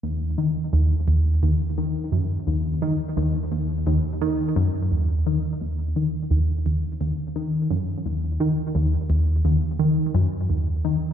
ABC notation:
X:1
M:4/4
L:1/8
Q:1/4=86
K:Ebm
V:1 name="Synth arpeggio sound" clef=bass
E,, E, E,, E,, E,, E, G,, E,, | E, E,, E,, E,, E, G,, E,, E, | E,, E, E,, E,, E,, E, G,, E,, | E, E,, E,, E,, E, G,, E,, E, |]